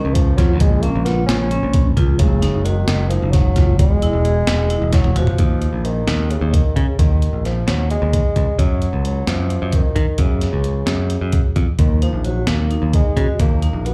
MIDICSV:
0, 0, Header, 1, 6, 480
1, 0, Start_track
1, 0, Key_signature, -6, "minor"
1, 0, Tempo, 456621
1, 637, Time_signature, 7, 3, 24, 8
1, 14652, End_track
2, 0, Start_track
2, 0, Title_t, "Vibraphone"
2, 0, Program_c, 0, 11
2, 0, Note_on_c, 0, 61, 77
2, 284, Note_off_c, 0, 61, 0
2, 401, Note_on_c, 0, 65, 70
2, 579, Note_off_c, 0, 65, 0
2, 883, Note_on_c, 0, 61, 68
2, 1060, Note_off_c, 0, 61, 0
2, 1111, Note_on_c, 0, 65, 79
2, 1472, Note_off_c, 0, 65, 0
2, 1596, Note_on_c, 0, 61, 72
2, 1954, Note_off_c, 0, 61, 0
2, 2070, Note_on_c, 0, 65, 76
2, 2250, Note_off_c, 0, 65, 0
2, 2544, Note_on_c, 0, 63, 84
2, 2726, Note_off_c, 0, 63, 0
2, 2782, Note_on_c, 0, 66, 66
2, 3144, Note_off_c, 0, 66, 0
2, 3267, Note_on_c, 0, 63, 72
2, 3627, Note_off_c, 0, 63, 0
2, 3743, Note_on_c, 0, 65, 72
2, 3924, Note_off_c, 0, 65, 0
2, 4233, Note_on_c, 0, 64, 83
2, 4410, Note_off_c, 0, 64, 0
2, 4467, Note_on_c, 0, 68, 70
2, 4826, Note_off_c, 0, 68, 0
2, 4951, Note_on_c, 0, 64, 80
2, 5309, Note_off_c, 0, 64, 0
2, 5427, Note_on_c, 0, 66, 75
2, 5606, Note_off_c, 0, 66, 0
2, 12640, Note_on_c, 0, 63, 73
2, 12820, Note_off_c, 0, 63, 0
2, 12879, Note_on_c, 0, 66, 73
2, 13240, Note_off_c, 0, 66, 0
2, 13363, Note_on_c, 0, 63, 63
2, 13724, Note_off_c, 0, 63, 0
2, 13837, Note_on_c, 0, 66, 70
2, 14020, Note_off_c, 0, 66, 0
2, 14321, Note_on_c, 0, 63, 68
2, 14503, Note_off_c, 0, 63, 0
2, 14560, Note_on_c, 0, 66, 60
2, 14652, Note_off_c, 0, 66, 0
2, 14652, End_track
3, 0, Start_track
3, 0, Title_t, "Tine electric piano"
3, 0, Program_c, 1, 4
3, 0, Note_on_c, 1, 49, 57
3, 0, Note_on_c, 1, 53, 54
3, 0, Note_on_c, 1, 56, 53
3, 0, Note_on_c, 1, 61, 57
3, 611, Note_off_c, 1, 49, 0
3, 615, Note_off_c, 1, 53, 0
3, 615, Note_off_c, 1, 56, 0
3, 620, Note_off_c, 1, 61, 0
3, 640, Note_on_c, 1, 49, 56
3, 652, Note_on_c, 1, 53, 58
3, 657, Note_on_c, 1, 56, 53
3, 658, Note_on_c, 1, 58, 63
3, 2279, Note_off_c, 1, 49, 0
3, 2285, Note_off_c, 1, 53, 0
3, 2288, Note_off_c, 1, 56, 0
3, 2288, Note_off_c, 1, 58, 0
3, 2300, Note_on_c, 1, 49, 60
3, 2312, Note_on_c, 1, 54, 54
3, 2313, Note_on_c, 1, 56, 58
3, 2318, Note_on_c, 1, 57, 56
3, 3948, Note_off_c, 1, 49, 0
3, 3954, Note_off_c, 1, 54, 0
3, 3954, Note_off_c, 1, 56, 0
3, 3957, Note_off_c, 1, 57, 0
3, 3982, Note_on_c, 1, 47, 53
3, 3987, Note_on_c, 1, 52, 60
3, 3991, Note_on_c, 1, 59, 63
3, 3995, Note_on_c, 1, 56, 51
3, 5628, Note_off_c, 1, 47, 0
3, 5631, Note_off_c, 1, 52, 0
3, 5633, Note_off_c, 1, 59, 0
3, 5635, Note_off_c, 1, 56, 0
3, 12397, Note_on_c, 1, 51, 48
3, 12408, Note_on_c, 1, 54, 44
3, 12414, Note_on_c, 1, 58, 50
3, 12414, Note_on_c, 1, 63, 61
3, 14652, Note_off_c, 1, 51, 0
3, 14652, Note_off_c, 1, 54, 0
3, 14652, Note_off_c, 1, 58, 0
3, 14652, Note_off_c, 1, 63, 0
3, 14652, End_track
4, 0, Start_track
4, 0, Title_t, "Bassoon"
4, 0, Program_c, 2, 70
4, 0, Note_on_c, 2, 51, 82
4, 139, Note_on_c, 2, 53, 84
4, 155, Note_off_c, 2, 51, 0
4, 398, Note_on_c, 2, 54, 89
4, 414, Note_off_c, 2, 53, 0
4, 633, Note_off_c, 2, 54, 0
4, 640, Note_on_c, 2, 56, 83
4, 860, Note_on_c, 2, 58, 91
4, 876, Note_off_c, 2, 56, 0
4, 1108, Note_on_c, 2, 59, 97
4, 1124, Note_off_c, 2, 58, 0
4, 1321, Note_off_c, 2, 59, 0
4, 1327, Note_on_c, 2, 61, 97
4, 2017, Note_off_c, 2, 61, 0
4, 2297, Note_on_c, 2, 49, 79
4, 2781, Note_on_c, 2, 51, 85
4, 2797, Note_off_c, 2, 49, 0
4, 3021, Note_off_c, 2, 51, 0
4, 3027, Note_on_c, 2, 51, 98
4, 3241, Note_off_c, 2, 51, 0
4, 3247, Note_on_c, 2, 53, 88
4, 3489, Note_on_c, 2, 54, 105
4, 3504, Note_off_c, 2, 53, 0
4, 3977, Note_off_c, 2, 54, 0
4, 3988, Note_on_c, 2, 56, 105
4, 5144, Note_off_c, 2, 56, 0
4, 5191, Note_on_c, 2, 54, 93
4, 5411, Note_off_c, 2, 54, 0
4, 5450, Note_on_c, 2, 53, 97
4, 6151, Note_on_c, 2, 51, 82
4, 6167, Note_off_c, 2, 53, 0
4, 6630, Note_on_c, 2, 49, 71
4, 6645, Note_off_c, 2, 51, 0
4, 6863, Note_on_c, 2, 51, 84
4, 6879, Note_off_c, 2, 49, 0
4, 7100, Note_on_c, 2, 49, 77
4, 7116, Note_off_c, 2, 51, 0
4, 7340, Note_off_c, 2, 49, 0
4, 7346, Note_on_c, 2, 51, 84
4, 7793, Note_off_c, 2, 51, 0
4, 7838, Note_on_c, 2, 53, 84
4, 8078, Note_on_c, 2, 54, 93
4, 8093, Note_off_c, 2, 53, 0
4, 8306, Note_off_c, 2, 54, 0
4, 8312, Note_on_c, 2, 56, 94
4, 9025, Note_on_c, 2, 54, 91
4, 9041, Note_off_c, 2, 56, 0
4, 9508, Note_off_c, 2, 54, 0
4, 9532, Note_on_c, 2, 54, 85
4, 9769, Note_on_c, 2, 53, 98
4, 9785, Note_off_c, 2, 54, 0
4, 10263, Note_on_c, 2, 51, 83
4, 10279, Note_off_c, 2, 53, 0
4, 10734, Note_on_c, 2, 49, 77
4, 10749, Note_off_c, 2, 51, 0
4, 12168, Note_off_c, 2, 49, 0
4, 12400, Note_on_c, 2, 51, 69
4, 12623, Note_off_c, 2, 51, 0
4, 12640, Note_on_c, 2, 53, 82
4, 12890, Note_on_c, 2, 54, 73
4, 12906, Note_off_c, 2, 53, 0
4, 13117, Note_on_c, 2, 58, 82
4, 13132, Note_off_c, 2, 54, 0
4, 13600, Note_off_c, 2, 58, 0
4, 13614, Note_on_c, 2, 56, 90
4, 13832, Note_off_c, 2, 56, 0
4, 13873, Note_on_c, 2, 56, 79
4, 14083, Note_off_c, 2, 56, 0
4, 14099, Note_on_c, 2, 58, 86
4, 14578, Note_on_c, 2, 59, 82
4, 14594, Note_off_c, 2, 58, 0
4, 14652, Note_off_c, 2, 59, 0
4, 14652, End_track
5, 0, Start_track
5, 0, Title_t, "Picked electric bass"
5, 0, Program_c, 3, 34
5, 51, Note_on_c, 3, 37, 84
5, 345, Note_off_c, 3, 37, 0
5, 396, Note_on_c, 3, 41, 88
5, 641, Note_off_c, 3, 41, 0
5, 641, Note_on_c, 3, 34, 107
5, 939, Note_off_c, 3, 34, 0
5, 1004, Note_on_c, 3, 34, 78
5, 1300, Note_off_c, 3, 34, 0
5, 1354, Note_on_c, 3, 34, 84
5, 1654, Note_off_c, 3, 34, 0
5, 1715, Note_on_c, 3, 34, 76
5, 2014, Note_off_c, 3, 34, 0
5, 2067, Note_on_c, 3, 37, 92
5, 2309, Note_on_c, 3, 30, 109
5, 2325, Note_off_c, 3, 37, 0
5, 2610, Note_off_c, 3, 30, 0
5, 2670, Note_on_c, 3, 30, 74
5, 2970, Note_off_c, 3, 30, 0
5, 3026, Note_on_c, 3, 30, 82
5, 3327, Note_off_c, 3, 30, 0
5, 3388, Note_on_c, 3, 30, 83
5, 3688, Note_off_c, 3, 30, 0
5, 3747, Note_on_c, 3, 30, 86
5, 3984, Note_off_c, 3, 30, 0
5, 3984, Note_on_c, 3, 28, 98
5, 4285, Note_off_c, 3, 28, 0
5, 4343, Note_on_c, 3, 28, 71
5, 4644, Note_off_c, 3, 28, 0
5, 4699, Note_on_c, 3, 28, 92
5, 5002, Note_off_c, 3, 28, 0
5, 5064, Note_on_c, 3, 28, 89
5, 5365, Note_off_c, 3, 28, 0
5, 5420, Note_on_c, 3, 28, 86
5, 5522, Note_off_c, 3, 28, 0
5, 5666, Note_on_c, 3, 39, 82
5, 5966, Note_off_c, 3, 39, 0
5, 6021, Note_on_c, 3, 34, 71
5, 6323, Note_off_c, 3, 34, 0
5, 6384, Note_on_c, 3, 39, 77
5, 6685, Note_off_c, 3, 39, 0
5, 6742, Note_on_c, 3, 39, 86
5, 6944, Note_off_c, 3, 39, 0
5, 7108, Note_on_c, 3, 49, 93
5, 7207, Note_off_c, 3, 49, 0
5, 7347, Note_on_c, 3, 39, 77
5, 7647, Note_off_c, 3, 39, 0
5, 7705, Note_on_c, 3, 34, 62
5, 8006, Note_off_c, 3, 34, 0
5, 8061, Note_on_c, 3, 39, 65
5, 8364, Note_off_c, 3, 39, 0
5, 8430, Note_on_c, 3, 39, 85
5, 8630, Note_off_c, 3, 39, 0
5, 8789, Note_on_c, 3, 37, 94
5, 8889, Note_off_c, 3, 37, 0
5, 9026, Note_on_c, 3, 42, 84
5, 9328, Note_off_c, 3, 42, 0
5, 9386, Note_on_c, 3, 37, 74
5, 9689, Note_off_c, 3, 37, 0
5, 9749, Note_on_c, 3, 42, 75
5, 10051, Note_off_c, 3, 42, 0
5, 10112, Note_on_c, 3, 42, 88
5, 10313, Note_off_c, 3, 42, 0
5, 10466, Note_on_c, 3, 51, 91
5, 10569, Note_off_c, 3, 51, 0
5, 10706, Note_on_c, 3, 42, 73
5, 11010, Note_off_c, 3, 42, 0
5, 11068, Note_on_c, 3, 37, 71
5, 11372, Note_off_c, 3, 37, 0
5, 11418, Note_on_c, 3, 42, 68
5, 11726, Note_off_c, 3, 42, 0
5, 11788, Note_on_c, 3, 42, 83
5, 11993, Note_off_c, 3, 42, 0
5, 12151, Note_on_c, 3, 41, 90
5, 12254, Note_off_c, 3, 41, 0
5, 12390, Note_on_c, 3, 39, 79
5, 12695, Note_off_c, 3, 39, 0
5, 12750, Note_on_c, 3, 34, 65
5, 13055, Note_off_c, 3, 34, 0
5, 13107, Note_on_c, 3, 39, 78
5, 13414, Note_off_c, 3, 39, 0
5, 13474, Note_on_c, 3, 39, 84
5, 13678, Note_off_c, 3, 39, 0
5, 13840, Note_on_c, 3, 49, 93
5, 13942, Note_off_c, 3, 49, 0
5, 14084, Note_on_c, 3, 39, 83
5, 14385, Note_off_c, 3, 39, 0
5, 14435, Note_on_c, 3, 34, 77
5, 14652, Note_off_c, 3, 34, 0
5, 14652, End_track
6, 0, Start_track
6, 0, Title_t, "Drums"
6, 160, Note_on_c, 9, 42, 82
6, 165, Note_on_c, 9, 36, 114
6, 265, Note_off_c, 9, 42, 0
6, 270, Note_off_c, 9, 36, 0
6, 402, Note_on_c, 9, 36, 80
6, 402, Note_on_c, 9, 38, 35
6, 402, Note_on_c, 9, 42, 60
6, 507, Note_off_c, 9, 38, 0
6, 507, Note_off_c, 9, 42, 0
6, 508, Note_off_c, 9, 36, 0
6, 633, Note_on_c, 9, 42, 85
6, 641, Note_on_c, 9, 36, 122
6, 738, Note_off_c, 9, 42, 0
6, 746, Note_off_c, 9, 36, 0
6, 870, Note_on_c, 9, 42, 58
6, 975, Note_off_c, 9, 42, 0
6, 1114, Note_on_c, 9, 38, 35
6, 1114, Note_on_c, 9, 42, 60
6, 1219, Note_off_c, 9, 38, 0
6, 1219, Note_off_c, 9, 42, 0
6, 1354, Note_on_c, 9, 38, 121
6, 1354, Note_on_c, 9, 42, 85
6, 1459, Note_off_c, 9, 38, 0
6, 1459, Note_off_c, 9, 42, 0
6, 1588, Note_on_c, 9, 42, 55
6, 1693, Note_off_c, 9, 42, 0
6, 1824, Note_on_c, 9, 42, 90
6, 1831, Note_on_c, 9, 36, 107
6, 1929, Note_off_c, 9, 42, 0
6, 1936, Note_off_c, 9, 36, 0
6, 2071, Note_on_c, 9, 36, 75
6, 2071, Note_on_c, 9, 42, 59
6, 2176, Note_off_c, 9, 36, 0
6, 2176, Note_off_c, 9, 42, 0
6, 2303, Note_on_c, 9, 42, 98
6, 2309, Note_on_c, 9, 36, 111
6, 2408, Note_off_c, 9, 42, 0
6, 2414, Note_off_c, 9, 36, 0
6, 2549, Note_on_c, 9, 38, 36
6, 2549, Note_on_c, 9, 42, 66
6, 2654, Note_off_c, 9, 38, 0
6, 2654, Note_off_c, 9, 42, 0
6, 2791, Note_on_c, 9, 42, 65
6, 2896, Note_off_c, 9, 42, 0
6, 3024, Note_on_c, 9, 38, 106
6, 3024, Note_on_c, 9, 42, 86
6, 3129, Note_off_c, 9, 38, 0
6, 3129, Note_off_c, 9, 42, 0
6, 3265, Note_on_c, 9, 42, 60
6, 3370, Note_off_c, 9, 42, 0
6, 3504, Note_on_c, 9, 38, 38
6, 3504, Note_on_c, 9, 42, 85
6, 3506, Note_on_c, 9, 36, 113
6, 3609, Note_off_c, 9, 38, 0
6, 3609, Note_off_c, 9, 42, 0
6, 3611, Note_off_c, 9, 36, 0
6, 3742, Note_on_c, 9, 38, 36
6, 3742, Note_on_c, 9, 42, 64
6, 3745, Note_on_c, 9, 36, 88
6, 3847, Note_off_c, 9, 38, 0
6, 3847, Note_off_c, 9, 42, 0
6, 3850, Note_off_c, 9, 36, 0
6, 3986, Note_on_c, 9, 36, 127
6, 3986, Note_on_c, 9, 42, 84
6, 4091, Note_off_c, 9, 36, 0
6, 4091, Note_off_c, 9, 42, 0
6, 4229, Note_on_c, 9, 42, 60
6, 4334, Note_off_c, 9, 42, 0
6, 4467, Note_on_c, 9, 42, 54
6, 4572, Note_off_c, 9, 42, 0
6, 4702, Note_on_c, 9, 38, 113
6, 4702, Note_on_c, 9, 42, 85
6, 4807, Note_off_c, 9, 38, 0
6, 4807, Note_off_c, 9, 42, 0
6, 4941, Note_on_c, 9, 42, 56
6, 5046, Note_off_c, 9, 42, 0
6, 5178, Note_on_c, 9, 38, 70
6, 5178, Note_on_c, 9, 42, 82
6, 5183, Note_on_c, 9, 36, 110
6, 5283, Note_off_c, 9, 38, 0
6, 5283, Note_off_c, 9, 42, 0
6, 5288, Note_off_c, 9, 36, 0
6, 5300, Note_on_c, 9, 48, 65
6, 5406, Note_off_c, 9, 48, 0
6, 5423, Note_on_c, 9, 42, 60
6, 5423, Note_on_c, 9, 45, 90
6, 5528, Note_off_c, 9, 42, 0
6, 5528, Note_off_c, 9, 45, 0
6, 5541, Note_on_c, 9, 43, 83
6, 5647, Note_off_c, 9, 43, 0
6, 5660, Note_on_c, 9, 42, 76
6, 5663, Note_on_c, 9, 36, 101
6, 5765, Note_off_c, 9, 42, 0
6, 5768, Note_off_c, 9, 36, 0
6, 5904, Note_on_c, 9, 42, 52
6, 6009, Note_off_c, 9, 42, 0
6, 6148, Note_on_c, 9, 42, 54
6, 6253, Note_off_c, 9, 42, 0
6, 6387, Note_on_c, 9, 38, 97
6, 6387, Note_on_c, 9, 42, 70
6, 6492, Note_off_c, 9, 38, 0
6, 6492, Note_off_c, 9, 42, 0
6, 6628, Note_on_c, 9, 42, 54
6, 6733, Note_off_c, 9, 42, 0
6, 6871, Note_on_c, 9, 36, 99
6, 6872, Note_on_c, 9, 42, 81
6, 6976, Note_off_c, 9, 36, 0
6, 6977, Note_off_c, 9, 42, 0
6, 7110, Note_on_c, 9, 36, 68
6, 7112, Note_on_c, 9, 42, 52
6, 7215, Note_off_c, 9, 36, 0
6, 7217, Note_off_c, 9, 42, 0
6, 7349, Note_on_c, 9, 42, 75
6, 7351, Note_on_c, 9, 36, 105
6, 7454, Note_off_c, 9, 42, 0
6, 7456, Note_off_c, 9, 36, 0
6, 7592, Note_on_c, 9, 42, 50
6, 7697, Note_off_c, 9, 42, 0
6, 7835, Note_on_c, 9, 38, 28
6, 7835, Note_on_c, 9, 42, 49
6, 7940, Note_off_c, 9, 38, 0
6, 7940, Note_off_c, 9, 42, 0
6, 8070, Note_on_c, 9, 38, 87
6, 8070, Note_on_c, 9, 42, 70
6, 8175, Note_off_c, 9, 38, 0
6, 8175, Note_off_c, 9, 42, 0
6, 8310, Note_on_c, 9, 42, 51
6, 8415, Note_off_c, 9, 42, 0
6, 8550, Note_on_c, 9, 36, 101
6, 8551, Note_on_c, 9, 42, 77
6, 8655, Note_off_c, 9, 36, 0
6, 8656, Note_off_c, 9, 42, 0
6, 8788, Note_on_c, 9, 42, 53
6, 8790, Note_on_c, 9, 36, 67
6, 8893, Note_off_c, 9, 42, 0
6, 8895, Note_off_c, 9, 36, 0
6, 9030, Note_on_c, 9, 36, 98
6, 9030, Note_on_c, 9, 42, 68
6, 9135, Note_off_c, 9, 42, 0
6, 9136, Note_off_c, 9, 36, 0
6, 9269, Note_on_c, 9, 42, 50
6, 9374, Note_off_c, 9, 42, 0
6, 9512, Note_on_c, 9, 42, 60
6, 9617, Note_off_c, 9, 42, 0
6, 9749, Note_on_c, 9, 38, 97
6, 9749, Note_on_c, 9, 42, 77
6, 9854, Note_off_c, 9, 38, 0
6, 9854, Note_off_c, 9, 42, 0
6, 9989, Note_on_c, 9, 42, 54
6, 10094, Note_off_c, 9, 42, 0
6, 10223, Note_on_c, 9, 42, 86
6, 10230, Note_on_c, 9, 36, 107
6, 10328, Note_off_c, 9, 42, 0
6, 10335, Note_off_c, 9, 36, 0
6, 10468, Note_on_c, 9, 42, 64
6, 10470, Note_on_c, 9, 36, 68
6, 10573, Note_off_c, 9, 42, 0
6, 10575, Note_off_c, 9, 36, 0
6, 10701, Note_on_c, 9, 42, 89
6, 10709, Note_on_c, 9, 36, 100
6, 10806, Note_off_c, 9, 42, 0
6, 10814, Note_off_c, 9, 36, 0
6, 10947, Note_on_c, 9, 38, 31
6, 10947, Note_on_c, 9, 42, 59
6, 11052, Note_off_c, 9, 38, 0
6, 11052, Note_off_c, 9, 42, 0
6, 11185, Note_on_c, 9, 42, 56
6, 11290, Note_off_c, 9, 42, 0
6, 11423, Note_on_c, 9, 38, 95
6, 11423, Note_on_c, 9, 42, 78
6, 11529, Note_off_c, 9, 38, 0
6, 11529, Note_off_c, 9, 42, 0
6, 11667, Note_on_c, 9, 42, 59
6, 11772, Note_off_c, 9, 42, 0
6, 11904, Note_on_c, 9, 42, 74
6, 11911, Note_on_c, 9, 36, 104
6, 12009, Note_off_c, 9, 42, 0
6, 12016, Note_off_c, 9, 36, 0
6, 12151, Note_on_c, 9, 42, 52
6, 12152, Note_on_c, 9, 36, 73
6, 12256, Note_off_c, 9, 42, 0
6, 12257, Note_off_c, 9, 36, 0
6, 12390, Note_on_c, 9, 42, 72
6, 12392, Note_on_c, 9, 36, 107
6, 12495, Note_off_c, 9, 42, 0
6, 12498, Note_off_c, 9, 36, 0
6, 12636, Note_on_c, 9, 42, 53
6, 12741, Note_off_c, 9, 42, 0
6, 12872, Note_on_c, 9, 42, 52
6, 12977, Note_off_c, 9, 42, 0
6, 13108, Note_on_c, 9, 38, 96
6, 13108, Note_on_c, 9, 42, 75
6, 13213, Note_off_c, 9, 38, 0
6, 13213, Note_off_c, 9, 42, 0
6, 13357, Note_on_c, 9, 42, 45
6, 13462, Note_off_c, 9, 42, 0
6, 13597, Note_on_c, 9, 42, 68
6, 13600, Note_on_c, 9, 36, 99
6, 13702, Note_off_c, 9, 42, 0
6, 13705, Note_off_c, 9, 36, 0
6, 13841, Note_on_c, 9, 36, 65
6, 13843, Note_on_c, 9, 42, 56
6, 13946, Note_off_c, 9, 36, 0
6, 13948, Note_off_c, 9, 42, 0
6, 14081, Note_on_c, 9, 42, 75
6, 14082, Note_on_c, 9, 36, 106
6, 14186, Note_off_c, 9, 42, 0
6, 14187, Note_off_c, 9, 36, 0
6, 14322, Note_on_c, 9, 42, 55
6, 14427, Note_off_c, 9, 42, 0
6, 14569, Note_on_c, 9, 42, 55
6, 14652, Note_off_c, 9, 42, 0
6, 14652, End_track
0, 0, End_of_file